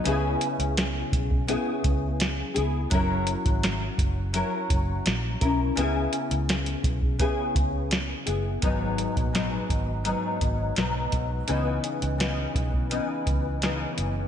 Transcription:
<<
  \new Staff \with { instrumentName = "Nylon-string guitar" } { \time 4/4 \key cis \dorian \tempo 4 = 84 <cis b e' gis'>2 <cis b e' gis'>4. <b e' gis'>8 | <fis cis' e' ais'>2 <fis cis' e' ais'>4. <cis' e' ais'>8 | <cis b e' gis'>2 <cis b e' gis'>4. <b e' gis'>8 | <gis, fis b dis'>4 <gis, fis b dis'>4 <gis, fis b dis'>4 <gis, fis b dis'>4 |
<cis e b dis'>4 <cis e b dis'>4 <cis e b dis'>4 <cis e b dis'>4 | }
  \new Staff \with { instrumentName = "Fingered electric bass" } { \clef bass \time 4/4 \key cis \dorian cis,8 r16 cis,8. b,,8. r16 cis,4 cis,8 | fis,,8. gis,,8. fis,,8. r16 fis,,8 ais,,8 b,,8 | cis,8 r16 cis,8. b,,8. r16 cis,4 fis,,8 | gis,,8. ais,,8. gis,,8. r16 gis,,8 b,,8 b,,8 |
cis,8 r16 cis,8. b,,8. r16 cis,4 fis,,8 | }
  \new DrumStaff \with { instrumentName = "Drums" } \drummode { \time 4/4 hh8 hh16 hh16 <hh sn>8 <hh bd>16 bd16 hh8 <hh bd>8 <hh sn>8 hh8 | <hh bd>8 hh16 <hh bd>16 <hh sn>8 <hh bd>8 hh8 <hh bd>8 <hh sn>8 <hh bd>8 | hh8 hh16 hh16 <hh sn>16 hh16 <hh bd>16 bd16 <hh bd>8 <hh bd>8 <hh sn>8 hh8 | <hh bd>8 hh16 <hh bd>16 <hh sn>8 <hh bd>8 hh8 <hh bd>8 <hh sn>8 <hh bd>8 |
hh8 hh16 hh16 <hh sn>8 <hh bd>16 bd16 hh8 <hh bd>8 <hh sn>8 hh8 | }
>>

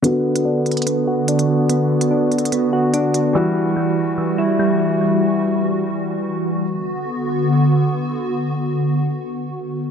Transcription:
<<
  \new Staff \with { instrumentName = "Synth keys" } { \time 4/4 \key b \minor \tempo 4 = 145 b4 d'4 b8 fis'8 d'4 | b4 d'4 b8 fis'8 d'4 | e4 g4 e8 e'8 g4~ | g2 r2 |
r1 | r1 | }
  \new Staff \with { instrumentName = "Analog synth pad" } { \time 4/4 \key b \minor << { fis'1~ | fis'1~ | fis'1~ | fis'1 |
<d b fis'>1~ | <d b fis'>1 | } \\ { <d b>1~ | <d b>1 | <e g>1~ | <e g>1 |
r1 | r1 | } >> }
  \new Staff \with { instrumentName = "Grand piano" } { \time 4/4 \key b \minor <d b fis'>1~ | <d b fis'>1 | <e g fis'>1~ | <e g fis'>1 |
r1 | r1 | }
  \new DrumStaff \with { instrumentName = "Drums" } \drummode { \time 4/4 hh8. hh16 r8 hh32 hh32 hh32 hh32 hh4 hh16 hh8. | hh8. hh16 \tuplet 3/2 { r16 r16 r16 hh16 hh16 hh16 } hh4 hh8 hh8 | r4 r4 r4 r4 | r4 r4 r4 r4 |
r4 r4 r4 r4 | r4 r4 r4 r4 | }
>>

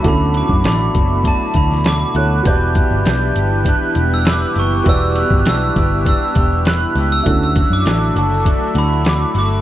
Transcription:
<<
  \new Staff \with { instrumentName = "Glockenspiel" } { \time 4/4 \key d \major \tempo 4 = 100 b''8 d'''8 b''4 a''8 b''8 d'''8 fis'''8 | g'''4 g'''4 fis'''8. e'''16 d'''8 cis'''8 | e'''8 fis'''8 e'''4 e'''4 fis'''8. e'''16~ | e'''16 e'''8 d'''8. a''4 b''8 d'''8 d'''8 | }
  \new Staff \with { instrumentName = "Upright piano" } { \time 4/4 \key d \major <cis' e' fis' a'>2.~ <cis' e' fis' a'>8 <e' fis' a' cis''>8 | <fis' g' b' d''>1 | <fis' g' b' d''>1 | <cis' e' fis' a'>1 | }
  \new Staff \with { instrumentName = "Clean electric guitar" } { \time 4/4 \key d \major <d d' fis'>8 fis'8 d'8 fis'8 d'8 fis'4 fis'8 | e8 g'8 d'8 g'8 d'8 g'8 b'8 g'8 | e8 g'8 d'8 g'8 d'8 g'8 b'8 g'8 | d8 fis'8 d'8 fis'8 d'8 fis'4 fis'8 | }
  \new Staff \with { instrumentName = "Analog synth pad" } { \clef bass \time 4/4 \key d \major << { <b, e'>1~ | <b, e'>1~ | <b, e'>1 | <d e'>1 | } \\ { <fis a>1 | <e g b>1~ | <e g b>1 | <fis a>1 | } >> }
  \new Staff \with { instrumentName = "Picked electric bass" } { \clef bass \time 4/4 \key d \major d,8. fis,16 a,,8 fis,,8. r16 d,4 d,8 | e,,8. g,,16 b,,8 g,,8. r16 e,,4 fis,,8 | e,,8. g,,16 b,,8 g,,8. r16 e,,4 cis,8 | d,8. fis,16 a,,8 fis,,8. r16 d,4 g,,8 | }
  \new DrumStaff \with { instrumentName = "Drums" } \drummode { \time 4/4 <hh bd>8 hh16 bd16 <hh sn>8 <hh bd>8 <hh bd>8 <hh bd>16 sn16 <hh sn>8 hh8 | <hh bd>8 <hh bd>8 <hh sn>8 hh8 <hh bd>8 hh8 <hh sn>8 hho8 | <hh bd>8 hh16 bd16 <hh sn>8 <hh bd>8 <hh bd>8 <hh bd>8 <hh sn>8 hho8 | <hh bd>8 <hh bd>8 <hh sn>8 hh8 <hh bd>8 hh8 <hh sn>8 hho8 | }
>>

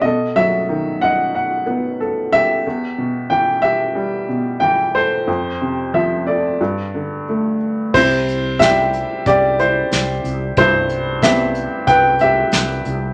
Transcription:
<<
  \new Staff \with { instrumentName = "Upright piano" } { \time 4/4 \key c \major \tempo 4 = 92 << { dis''8 e''4 fis''4. r8 e''8~ | e''4 g''8 e''4. g''8 c''8~ | c''4 e''8 d''4. r4 | c''4 e''4 d''8 c''4 r8 |
c''4 e''4 g''8 e''4 r8 | } \\ { a'4. dis''2 g'8~ | g'4. g'2 a'8~ | a'4. a'2 r8 | e'4 g'4 g'8 e'4 r8 |
e'4 g'4 b'8 g'4 r8 | } >> }
  \new Staff \with { instrumentName = "Upright piano" } { \clef bass \time 4/4 \key c \major b,8 fis8 dis4 fis''8 b8 a'4 | e,8 b,8 e4 g8 b,8 e4 | f,8 c8 f4 g,8 d8 a4 | c4 <g c' e'>2. |
g,4 <b c' e'>2. | }
  \new Staff \with { instrumentName = "Fretless electric bass" } { \clef bass \time 4/4 \key c \major r1 | r1 | r1 | c,2 c,4 c,8 c,8 |
c,2 c,4 c,8 c,8 | }
  \new DrumStaff \with { instrumentName = "Drums" } \drummode { \time 4/4 r4 r4 r4 r4 | r4 r4 r4 r4 | r4 r4 r4 r4 | <cymc bd>8 hh8 <hh bd sn>8 hh8 <hh bd>8 hh8 <hh sn>8 hh8 |
<hh bd>8 hh8 <hh bd sn>8 hh8 <hh bd>8 hh8 <hh sn>8 hh8 | }
>>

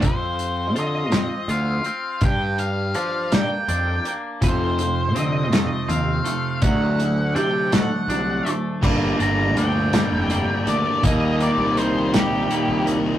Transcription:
<<
  \new Staff \with { instrumentName = "Lead electric guitar" } { \time 6/8 \key g \minor \tempo 4. = 55 c''4 ees''4 f''4 | g''8 f''4 g''4 r8 | c''4 ees''4 f''4 | fis''4 g''8 fis''4 r8 |
r8 bes''8 g''4. d''8 | ees''8 d''8 c''8 g'4 r8 | }
  \new Staff \with { instrumentName = "Clean electric guitar" } { \time 6/8 \key g \minor f,4 f'8 c'8 f'8 c'8 | g,4 d'8 bes8 d'8 bes8 | f,4 c'8 a8 c'8 a8 | d4 d'8 a8 d'8 a8 |
<d g bes d'>8 <d g bes d'>8 <d g bes d'>8 <d g bes d'>8 <d g bes d'>8 r8 | <ees g bes ees'>8 <ees g bes ees'>8 <ees g bes ees'>8 <ees g bes ees'>8 <ees g bes ees'>8 r8 | }
  \new Staff \with { instrumentName = "Distorted electric guitar" } { \clef bass \time 6/8 \key g \minor r2. | r2. | r2. | r2. |
<g, d g bes d'>2~ <g, d g bes d'>8 <g, d g bes d'>8 | <ees g bes ees'>2~ <ees g bes ees'>8 <ees g bes ees'>8 | }
  \new Staff \with { instrumentName = "Overdriven electric guitar" } { \clef bass \time 6/8 \key g \minor r2. | r2. | <f, c f>8 <f, c>8 <f, c>8 <f, c>8 <f, c>8 <f, c>8 | <d fis a>8 <d fis>8 <d fis>8 <d fis>8 <d fis>8 <d fis>8 |
<g, d g bes d'>2. | <ees g bes ees'>2. | }
  \new Staff \with { instrumentName = "Picked electric bass" } { \clef bass \time 6/8 \key g \minor f,4 d8 f,16 r16 d,8 r8 | g,4 f8 g,16 r16 f,8 r8 | f,4 d8 f,16 r16 ees,8 r8 | d,4 c8 d,16 r16 c,8 r8 |
g,,8 g,,8 d,8. f,,16 f,,16 r16 d,16 r16 | ees,8. c,4. c,8. | }
  \new DrumStaff \with { instrumentName = "Drums" } \drummode { \time 6/8 <hh bd>8 hh8 hh8 <hh sn>8 hh8 hh8 | <hh bd>8 hh8 hh8 <hh sn>8 hh8 hh8 | <hh bd>8 hh8 hh8 <hh sn>8 hh8 hh8 | <hh bd>8 hh8 hh8 <hh sn>8 hh8 hh8 |
<cymc bd>8 hh8 hh8 <hh sn>8 hh8 hh8 | <hh bd>8 hh8 hh8 <hh sn>8 hh8 hh8 | }
>>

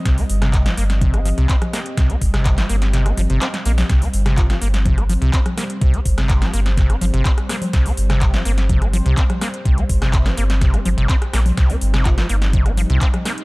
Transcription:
<<
  \new Staff \with { instrumentName = "FM electric piano" } { \time 4/4 \key c \minor \tempo 4 = 125 r1 | r1 | r4 f'16 f'16 r2 r8 | r1 |
r1 | r1 | r4 f'16 f'16 r2 r8 | }
  \new Staff \with { instrumentName = "Analog synth pad" } { \time 4/4 \key c \minor << { ees''1~ | ees''1 | c''1~ | c''1~ |
c''1~ | c''1 | ees'1 | } \\ { <g c'>1~ | <g c'>1~ | <g c'>1~ | <g c'>1~ |
<g c'>1~ | <g c'>1~ | <g c'>1 | } >> }
  \new Staff \with { instrumentName = "Acid bass" } { \clef bass \time 4/4 \key c \minor c16 c'16 r16 c8 f16 bes16 r16 c16 c'16 f16 c16 c'16 r16 bes16 r16 | c16 c'16 r16 c8 f16 bes16 r16 c16 c'16 f16 c16 c'16 r16 bes16 r16 | c16 c'16 r16 c8 f16 bes16 r16 c16 c'16 f16 c16 c'16 r16 bes16 r16 | c16 c'16 r16 c8 f16 bes16 r16 c16 c'16 f16 c16 c'16 r16 bes16 r16 |
c16 c'16 r16 c8 f16 bes16 r16 c16 c'16 f16 c16 c'16 r16 bes16 r16 | c16 c'16 r16 c8 f16 bes16 r16 c16 c'16 f16 c16 c'16 r16 bes16 r16 | c16 c'16 r16 c8 f16 bes16 r16 c16 c'16 f16 c16 c'16 r16 bes16 r16 | }
  \new Staff \with { instrumentName = "Sub bass" } { \clef bass \time 4/4 \key c \minor c,16 r16 g,,4 g,,4~ g,,16 c,16 r4 | c,16 r16 g,,4 g,,4 g,,16 g,,16 r8 bes,,16 r16 | c,16 r16 g,,4 g,,4~ g,,16 c,16 r4 | c,16 r16 g,,4 g,,4 g,,16 g,,16 r4 |
c,16 r16 g,,4 g,,4~ g,,16 c,16 r4 | c,16 r16 g,,4 g,,4 g,,16 g,,16 r8 bes,,16 r16 | c,16 r16 g,,4 g,,4~ g,,16 c,16 r4 | }
  \new DrumStaff \with { instrumentName = "Drums" } \drummode { \time 4/4 <hh bd sn>16 hho16 hho16 <hh ss sn>16 <hc hh bd ss>16 <hh sn>16 hho16 <hh sn>16 <cgl hh bd>16 <hh ss>16 <cgl hho>16 hh16 <hc hh bd>16 <cgl hh ss>16 <hho ss sn>16 hh16 | <hh bd sn>16 hh16 <hho bd>16 <hh ss sn>16 <hc hh bd ss>16 <hc hh sn>16 hho16 <hh sn>16 <hh sn>16 <hh ss>16 <cgl hho>16 hh16 <hc hh sn>16 <hh sn>16 hho16 <cgl hho sn>16 | <hh bd sn>16 hho16 hho16 <hh ss sn>16 <hc hh bd ss>16 <hh sn>16 hho16 <hh sn>16 <cgl hh bd>16 <hh ss>16 <cgl hho>16 hh16 <hc hh bd>16 <cgl hh ss>16 <hho ss sn>16 hh16 | <hh bd>16 hh16 <hho bd>16 <hh ss sn>16 <hc hh bd ss>16 <hc hh sn>16 hho16 <hh sn>16 <hh bd sn>16 <hh ss>16 <cgl hho>16 hh16 <hc hh bd>16 <hh ss>16 <hho ss sn>16 <cgl hho>16 |
<hh bd sn>16 hho16 hho16 <hh ss sn>16 <hc hh bd ss>16 <hh sn>16 hho16 <hh sn>16 <cgl hh bd>16 <hh ss>16 <cgl hho>16 hh16 <hc hh bd>16 <cgl hh ss>16 <hho ss sn>16 hh16 | <hh bd>16 hh16 <hho bd>16 <hh ss sn>16 <hc hh bd ss>16 <hc hh sn>16 hho16 <hh sn>16 <hh bd sn>16 <hh ss>16 <cgl hho>16 hh16 <hc hh bd>16 <hh ss>16 <hho ss sn>16 <cgl hho>16 | <hh bd sn>16 hho16 hho16 <hh ss sn>16 <hc hh bd ss>16 <hh sn>16 hho16 <hh sn>16 <cgl hh bd>16 <hh ss>16 <cgl hho>16 hh16 <hc hh bd>16 <cgl hh ss>16 <hho ss sn>16 hh16 | }
>>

